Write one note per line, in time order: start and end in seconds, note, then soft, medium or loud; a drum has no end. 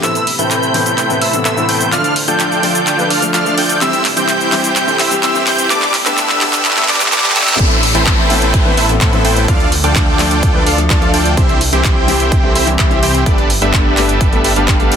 0.03 0.12 A2 medium
0.03 1.91 C3 medium
0.03 0.12 E3 medium
0.03 1.91 A3 medium
0.03 0.13 B3 medium
0.03 0.13 C4 medium
0.03 0.25 E4 loud
0.03 1.91 E4 medium
0.03 0.25 A4 medium
0.03 0.13 A4 medium
0.03 0.25 B4 medium
0.03 0.25 C5 medium
0.03 0.25 E5 loud
0.03 1.91 B5 medium
0.03 0.25 E6 loud
0.03 clap soft
0.03 closed hi-hat medium
0.03 riser medium
0.03 cabasa medium
0.15 closed hi-hat soft
0.15 cabasa soft
0.27 open hi-hat loud
0.38 0.71 A2 medium
0.38 0.71 E3 medium
0.38 0.72 C4 medium
0.38 1.19 E4 medium
0.38 1.19 A4 medium
0.38 0.72 A4 medium
0.38 1.19 B4 medium
0.38 1.19 C5 medium
0.38 1.19 G5 medium
0.38 1.19 G6 medium
0.38 closed hi-hat medium
0.38 cabasa medium
0.51 clap medium
0.51 closed hi-hat medium
0.51 cabasa medium
0.63 cabasa soft
0.74 0.89 A2 medium
0.74 0.89 E3 medium
0.74 0.89 B3 medium
0.74 0.89 C4 medium
0.74 0.89 A4 loud
0.74 open hi-hat medium
0.86 closed hi-hat medium
0.86 cabasa medium
0.98 clap medium
0.98 closed hi-hat medium
0.98 cabasa medium
1.09 1.19 A2 medium
1.09 1.19 E3 medium
1.09 1.19 B3 medium
1.09 1.19 C4 medium
1.09 1.19 B4 medium
1.09 cabasa soft
1.21 1.35 E4 medium
1.21 1.35 A4 medium
1.21 1.35 B4 medium
1.21 1.35 C5 medium
1.21 1.35 E5 medium
1.21 1.35 E6 medium
1.21 open hi-hat loud
1.33 1.54 A2 medium
1.33 1.54 E3 medium
1.33 1.54 B3 medium
1.33 1.54 C4 medium
1.33 1.54 A4 loud
1.33 closed hi-hat medium
1.33 cabasa medium
1.45 1.66 E4 medium
1.45 1.66 A4 medium
1.45 1.66 B4 medium
1.45 1.66 C5 medium
1.45 1.66 E5 medium
1.45 1.66 E6 medium
1.45 clap medium
1.45 closed hi-hat medium
1.45 cabasa medium
1.56 1.89 A2 loud
1.56 1.89 E3 medium
1.56 1.90 B3 medium
1.56 1.90 C4 medium
1.56 1.90 A4 loud
1.56 cabasa soft
1.69 1.90 E4 loud
1.69 1.90 A4 medium
1.69 1.90 B4 medium
1.69 1.90 C5 medium
1.69 1.90 G5 loud
1.69 1.90 G6 loud
1.69 open hi-hat medium
1.81 closed hi-hat medium
1.81 cabasa medium
1.92 3.79 D3 medium
1.92 2.01 F3 medium
1.92 2.01 A3 medium
1.92 3.79 A3 medium
1.92 2.14 D4 medium
1.92 2.02 D4 medium
1.92 2.14 F4 medium
1.92 3.80 F4 medium
1.92 3.79 A4 medium
1.92 2.14 A4 medium
1.92 2.02 A4 medium
1.92 2.14 D5 medium
1.92 2.14 F5 loud
1.92 2.14 F6 loud
1.92 clap medium
1.92 closed hi-hat medium
1.92 cabasa medium
2.04 closed hi-hat soft
2.04 cabasa soft
2.16 open hi-hat loud
2.27 2.60 F3 medium
2.27 2.60 A3 medium
2.27 3.08 D4 medium
2.27 2.61 D4 medium
2.27 3.08 F4 medium
2.27 3.08 A4 medium
2.27 2.61 A4 medium
2.27 3.08 D5 medium
2.27 3.08 G5 medium
2.27 3.08 G6 medium
2.27 closed hi-hat medium
2.27 cabasa medium
2.40 clap medium
2.40 closed hi-hat medium
2.40 cabasa medium
2.52 cabasa soft
2.63 2.78 F3 medium
2.63 2.78 A3 medium
2.63 2.78 D4 medium
2.63 2.78 A4 loud
2.63 open hi-hat loud
2.75 closed hi-hat medium
2.75 cabasa medium
2.87 clap medium
2.87 closed hi-hat medium
2.87 cabasa medium
2.98 3.08 F3 medium
2.98 3.08 A3 medium
2.98 3.08 D4 medium
2.98 3.08 B4 loud
2.98 cabasa soft
3.10 3.24 D4 medium
3.10 3.24 F4 medium
3.10 3.24 A4 medium
3.10 3.24 D5 medium
3.10 3.24 F5 medium
3.10 3.24 F6 medium
3.10 open hi-hat loud
3.22 3.43 F3 medium
3.22 3.43 A3 medium
3.22 3.43 D4 medium
3.22 3.43 A4 loud
3.22 closed hi-hat soft
3.22 cabasa medium
3.34 3.55 D4 medium
3.34 3.55 F4 medium
3.34 3.55 A4 medium
3.34 3.55 D5 medium
3.34 3.55 F5 medium
3.34 3.55 F6 medium
3.34 clap medium
3.34 closed hi-hat medium
3.34 cabasa medium
3.45 3.78 F3 loud
3.45 3.78 A3 medium
3.45 3.79 D4 medium
3.45 3.79 A4 loud
3.45 cabasa soft
3.58 3.79 D4 medium
3.58 3.79 F4 medium
3.58 3.79 A4 medium
3.58 3.79 D5 medium
3.58 3.79 G5 loud
3.58 3.79 G6 loud
3.58 open hi-hat loud
3.69 closed hi-hat medium
3.69 cabasa medium
3.81 5.69 C3 medium
3.81 3.90 E3 medium
3.81 3.90 G3 medium
3.81 5.68 G3 medium
3.81 4.03 C4 loud
3.81 3.91 C4 medium
3.81 4.03 E4 medium
3.81 5.69 E4 medium
3.81 4.03 G4 medium
3.81 7.56 G4 medium
3.81 3.91 G4 medium
3.81 4.03 C5 medium
3.81 4.03 E5 loud
3.81 4.03 E6 loud
3.81 clap medium
3.81 closed hi-hat medium
3.81 cabasa medium
3.93 closed hi-hat soft
3.93 cabasa soft
4.05 clap medium
4.05 open hi-hat loud
4.16 4.49 E3 medium
4.16 4.49 G3 medium
4.16 4.97 C4 medium
4.16 4.50 C4 medium
4.16 4.97 E4 medium
4.16 4.97 G4 medium
4.16 4.50 G4 medium
4.16 4.97 C5 medium
4.16 4.97 G5 medium
4.16 4.97 G6 medium
4.16 closed hi-hat medium
4.16 cabasa medium
4.29 clap medium
4.29 closed hi-hat medium
4.29 cabasa medium
4.41 cabasa soft
4.52 4.67 E3 loud
4.52 4.67 G3 medium
4.52 4.67 C4 medium
4.52 4.67 G4 loud
4.52 clap medium
4.52 open hi-hat loud
4.64 closed hi-hat medium
4.64 cabasa medium
4.76 clap medium
4.76 closed hi-hat medium
4.76 cabasa medium
4.87 4.97 E3 medium
4.87 4.97 G3 medium
4.87 4.97 C4 medium
4.87 4.97 A4 loud
4.87 cabasa soft
4.99 5.13 C4 medium
4.99 5.13 E4 medium
4.99 5.13 G4 medium
4.99 5.13 C5 medium
4.99 5.13 E5 medium
4.99 5.13 E6 medium
4.99 clap medium
4.99 open hi-hat loud
5.11 5.32 E3 medium
5.11 5.32 G3 medium
5.11 5.32 C4 medium
5.11 5.32 G4 loud
5.11 closed hi-hat soft
5.11 cabasa medium
5.23 5.44 C4 medium
5.23 5.44 E4 medium
5.23 5.44 G4 medium
5.23 5.44 C5 medium
5.23 5.44 E5 medium
5.23 5.44 E6 medium
5.23 clap medium
5.23 closed hi-hat medium
5.23 cabasa medium
5.34 5.67 E3 loud
5.34 5.67 G3 medium
5.34 5.68 C4 medium
5.34 5.68 G4 loud
5.34 cabasa soft
5.47 5.68 C4 medium
5.47 5.68 E4 medium
5.47 5.68 G4 medium
5.47 5.68 C5 medium
5.47 5.68 G5 loud
5.47 5.68 G6 loud
5.47 clap loud
5.47 open hi-hat loud
5.58 closed hi-hat soft
5.58 cabasa medium
5.70 5.79 G2 medium
5.70 7.57 B2 medium
5.70 5.79 D3 medium
5.70 5.80 A3 medium
5.70 7.57 A3 medium
5.70 5.80 B3 medium
5.70 5.92 D4 loud
5.70 7.57 D4 medium
5.70 5.92 G4 medium
5.70 5.80 G4 medium
5.70 5.92 A4 medium
5.70 5.92 B4 medium
5.70 5.92 D5 loud
5.70 5.92 D6 loud
5.70 clap medium
5.70 closed hi-hat medium
5.70 cabasa medium
5.82 clap medium
5.82 closed hi-hat soft
5.82 cabasa soft
5.94 clap medium
5.94 open hi-hat loud
6.05 6.38 G2 medium
6.05 6.38 D3 medium
6.05 6.38 A3 medium
6.05 6.39 B3 medium
6.05 6.86 D4 medium
6.05 6.86 G4 medium
6.05 6.39 G4 medium
6.05 6.86 A4 medium
6.05 6.86 B4 medium
6.05 6.86 E5 loud
6.05 6.86 E6 medium
6.05 clap medium
6.05 closed hi-hat medium
6.05 cabasa medium
6.18 clap loud
6.18 closed hi-hat medium
6.18 cabasa medium
6.29 clap medium
6.29 closed hi-hat soft
6.29 cabasa soft
6.41 6.56 G2 loud
6.41 6.56 D3 medium
6.41 6.56 A3 medium
6.41 6.56 B3 medium
6.41 6.56 G4 loud
6.41 clap loud
6.41 open hi-hat loud
6.53 clap medium
6.53 closed hi-hat medium
6.53 cabasa medium
6.65 clap loud
6.65 closed hi-hat medium
6.65 reverse cymbal medium
6.65 cabasa medium
6.71 clap medium
6.76 6.86 G2 medium
6.76 6.86 D3 medium
6.76 6.86 A3 medium
6.76 6.86 B3 medium
6.76 6.86 A4 loud
6.76 clap medium
6.76 closed hi-hat soft
6.76 cabasa soft
6.83 clap medium
6.88 7.02 D4 medium
6.88 7.02 G4 medium
6.88 7.02 A4 medium
6.88 7.02 B4 medium
6.88 7.02 D5 medium
6.88 7.02 D6 medium
6.88 clap loud
6.88 open hi-hat loud
6.94 clap medium
7.00 7.15 G2 medium
7.00 7.15 D3 medium
7.00 7.15 A3 medium
7.00 7.15 B3 medium
7.00 7.15 G4 medium
7.00 clap medium
7.00 closed hi-hat soft
7.00 cabasa medium
7.06 clap medium
7.12 7.33 D4 medium
7.12 7.33 G4 medium
7.12 7.33 A4 medium
7.12 7.33 B4 medium
7.12 7.33 D5 medium
7.12 7.33 D6 medium
7.12 clap loud
7.12 closed hi-hat medium
7.12 cabasa medium
7.18 clap loud
7.23 7.38 G2 medium
7.23 7.38 D3 medium
7.23 7.39 A3 medium
7.23 7.39 B3 medium
7.23 7.39 G4 medium
7.23 clap medium
7.23 cabasa soft
7.30 clap medium
7.36 7.57 D4 medium
7.36 7.57 G4 medium
7.36 7.57 A4 medium
7.36 7.57 B4 medium
7.36 7.57 E5 loud
7.36 7.57 E6 loud
7.36 clap loud
7.36 open hi-hat loud
7.42 clap loud
7.47 7.56 D3 loud
7.47 7.57 A3 medium
7.47 7.57 B3 medium
7.47 7.57 G4 loud
7.47 clap loud
7.47 closed hi-hat medium
7.47 cabasa medium
7.53 clap loud
7.59 7.92 A1 loud
7.59 7.68 A2 medium
7.59 7.68 E3 medium
7.59 7.69 B3 medium
7.59 7.69 C4 medium
7.59 7.81 E4 medium
7.59 7.81 A4 medium
7.59 7.69 A4 medium
7.59 7.81 B4 medium
7.59 7.81 C5 medium
7.59 7.81 E5 loud
7.59 kick loud
7.59 closed hi-hat medium
7.59 downlifter medium
7.71 closed hi-hat soft
7.83 open hi-hat loud
7.94 8.75 A1 loud
7.94 8.27 A2 medium
7.94 8.27 E3 medium
7.94 8.27 C4 medium
7.94 8.75 E4 medium
7.94 8.75 A4 medium
7.94 8.28 A4 medium
7.94 8.75 B4 medium
7.94 8.75 C5 medium
7.94 8.75 G5 medium
7.94 closed hi-hat medium
8.07 kick loud
8.07 clap loud
8.07 closed hi-hat medium
8.30 8.45 A2 medium
8.30 8.45 E3 medium
8.30 8.45 B3 medium
8.30 8.45 C4 medium
8.30 8.45 A4 loud
8.30 open hi-hat loud
8.42 closed hi-hat medium
8.54 kick loud
8.54 closed hi-hat medium
8.65 8.74 A2 medium
8.65 8.75 E3 medium
8.65 8.75 B3 medium
8.65 8.75 C4 medium
8.65 8.75 B4 loud
8.77 8.99 A1 medium
8.77 8.91 E4 medium
8.77 8.91 A4 medium
8.77 8.91 B4 medium
8.77 8.91 C5 medium
8.77 8.91 E5 medium
8.77 open hi-hat loud
8.89 9.10 A2 medium
8.89 9.10 E3 medium
8.89 9.10 B3 medium
8.89 9.10 C4 medium
8.89 9.10 A4 loud
8.89 closed hi-hat soft
9.01 9.22 A2 loud
9.01 9.22 E4 medium
9.01 9.22 A4 medium
9.01 9.22 B4 medium
9.01 9.22 C5 medium
9.01 9.22 E5 medium
9.01 kick loud
9.01 clap loud
9.01 closed hi-hat medium
9.12 9.45 A2 loud
9.12 9.45 E3 medium
9.12 9.45 B3 medium
9.12 9.46 C4 medium
9.12 9.46 A4 loud
9.12 closed hi-hat soft
9.25 9.46 A1 medium
9.25 9.45 E4 loud
9.25 9.45 A4 medium
9.25 9.46 B4 medium
9.25 9.46 C5 medium
9.25 9.45 G5 loud
9.25 open hi-hat loud
9.37 closed hi-hat medium
9.48 9.81 D2 medium
9.48 9.57 F3 medium
9.48 9.57 A3 medium
9.48 9.70 D4 medium
9.48 9.70 F4 medium
9.48 9.70 A4 medium
9.48 9.70 D5 medium
9.48 9.70 F5 loud
9.48 kick loud
9.48 closed hi-hat medium
9.60 closed hi-hat soft
9.72 open hi-hat loud
9.83 10.64 D2 medium
9.83 10.16 F3 medium
9.83 10.16 A3 medium
9.83 10.64 D4 medium
9.83 10.16 D4 medium
9.83 10.64 F4 medium
9.83 10.64 A4 medium
9.83 10.17 A4 medium
9.83 10.64 D5 medium
9.83 10.64 G5 medium
9.83 closed hi-hat medium
9.96 kick loud
9.96 clap loud
9.96 closed hi-hat medium
10.19 10.34 F3 loud
10.19 10.34 A3 medium
10.19 10.34 D4 medium
10.19 10.34 A4 loud
10.19 clap medium
10.19 open hi-hat medium
10.31 closed hi-hat medium
10.43 kick loud
10.43 closed hi-hat medium
10.54 10.63 F3 medium
10.54 10.64 A3 medium
10.54 10.64 D4 medium
10.54 10.64 B4 loud
10.66 10.88 D2 medium
10.66 10.80 D4 medium
10.66 10.80 F4 medium
10.66 10.80 A4 medium
10.66 10.80 D5 medium
10.66 10.80 F5 medium
10.66 open hi-hat loud
10.78 10.99 F3 medium
10.78 10.99 A3 medium
10.78 10.99 D4 medium
10.78 10.99 A4 loud
10.78 closed hi-hat medium
10.90 11.11 D2 loud
10.90 11.11 D4 medium
10.90 11.11 F4 medium
10.90 11.11 A4 medium
10.90 11.11 D5 medium
10.90 11.11 F5 medium
10.90 kick loud
10.90 clap loud
10.90 closed hi-hat medium
11.01 11.34 F3 loud
11.01 11.34 A3 medium
11.01 11.35 D4 medium
11.01 11.35 A4 loud
11.01 closed hi-hat soft
11.14 11.35 D2 medium
11.14 11.34 D4 loud
11.14 11.34 F4 medium
11.14 11.34 A4 medium
11.14 11.34 D5 medium
11.14 11.34 G5 loud
11.14 open hi-hat loud
11.26 closed hi-hat medium
11.37 11.70 C2 loud
11.37 11.46 E3 medium
11.37 11.46 G3 medium
11.37 11.59 C4 loud
11.37 11.47 C4 medium
11.37 11.59 E4 medium
11.37 11.59 G4 medium
11.37 11.47 G4 medium
11.37 11.59 C5 medium
11.37 11.59 E5 loud
11.37 kick loud
11.37 closed hi-hat medium
11.49 closed hi-hat soft
11.61 open hi-hat loud
11.72 12.53 C2 loud
11.72 12.05 E3 medium
11.72 12.05 G3 medium
11.72 12.53 C4 medium
11.72 12.05 C4 medium
11.72 12.53 E4 medium
11.72 12.53 G4 medium
11.72 12.06 G4 medium
11.72 12.53 C5 medium
11.72 12.53 G5 medium
11.72 closed hi-hat medium
11.85 kick loud
11.85 clap loud
11.85 closed hi-hat medium
12.08 12.23 E3 loud
12.08 12.23 G3 medium
12.08 12.23 C4 medium
12.08 12.23 G4 loud
12.08 open hi-hat loud
12.20 closed hi-hat medium
12.32 kick loud
12.32 closed hi-hat medium
12.43 12.52 E3 medium
12.43 12.53 G3 medium
12.43 12.53 C4 medium
12.43 12.53 A4 medium
12.55 12.77 C2 loud
12.55 12.69 C4 medium
12.55 12.69 E4 medium
12.55 12.69 G4 medium
12.55 12.69 C5 medium
12.55 12.69 E5 medium
12.55 open hi-hat loud
12.67 12.88 E3 medium
12.67 12.88 G3 medium
12.67 12.88 C4 medium
12.67 12.88 G4 loud
12.67 closed hi-hat medium
12.79 13.00 C2 loud
12.79 13.00 C4 medium
12.79 13.00 E4 medium
12.79 13.00 G4 medium
12.79 13.00 C5 medium
12.79 13.00 E5 medium
12.79 kick loud
12.79 clap loud
12.79 closed hi-hat medium
12.90 13.23 E3 medium
12.90 13.23 G3 medium
12.90 13.23 C4 medium
12.90 13.24 G4 loud
12.90 closed hi-hat soft
13.03 13.24 C2 medium
13.03 13.23 C4 loud
13.03 13.23 E4 medium
13.03 13.23 G4 medium
13.03 13.23 C5 medium
13.03 13.23 G5 loud
13.03 open hi-hat loud
13.15 closed hi-hat soft
13.26 13.59 G1 medium
13.26 13.35 G2 medium
13.26 13.35 D3 medium
13.26 13.36 B3 medium
13.26 13.48 D4 loud
13.26 13.48 G4 medium
13.26 13.48 A4 medium
13.26 13.48 B4 medium
13.26 13.48 D5 loud
13.26 kick loud
13.26 closed hi-hat medium
13.38 closed hi-hat soft
13.50 open hi-hat loud
13.61 14.42 G1 loud
13.61 13.94 G2 medium
13.61 13.94 D3 medium
13.61 13.94 A3 medium
13.61 13.94 B3 medium
13.61 14.42 D4 medium
13.61 14.42 G4 medium
13.61 13.95 G4 medium
13.61 14.42 A4 medium
13.61 14.42 B4 medium
13.61 14.42 E5 medium
13.61 closed hi-hat medium
13.74 kick loud
13.74 clap loud
13.74 closed hi-hat medium
13.97 14.12 G2 medium
13.97 14.12 D3 medium
13.97 14.12 A3 medium
13.97 14.12 B3 medium
13.97 14.12 G4 loud
13.97 clap medium
13.97 open hi-hat loud
14.09 closed hi-hat soft
14.21 kick loud
14.21 closed hi-hat medium
14.32 14.41 G2 medium
14.32 14.42 D3 medium
14.32 14.42 A3 medium
14.32 14.42 B3 medium
14.32 14.42 A4 loud
14.32 closed hi-hat soft
14.44 14.54 G1 medium
14.44 14.53 D4 medium
14.44 14.53 G4 medium
14.44 14.53 A4 medium
14.44 14.53 B4 medium
14.44 14.53 E5 medium
14.44 open hi-hat loud
14.56 14.96 G1 loud
14.56 14.71 G2 medium
14.56 14.71 D3 medium
14.56 14.71 A3 medium
14.56 14.71 B3 medium
14.56 14.96 D4 medium
14.56 14.96 G4 medium
14.56 14.71 G4 medium
14.56 14.96 A4 medium
14.56 14.96 B4 medium
14.56 14.96 F5 loud
14.56 closed hi-hat soft
14.68 kick loud
14.68 clap loud
14.68 closed hi-hat medium
14.79 14.94 G2 medium
14.79 14.94 D3 medium
14.79 14.95 A3 medium
14.79 14.95 B3 medium
14.79 14.95 G4 medium
14.79 closed hi-hat soft
14.92 open hi-hat medium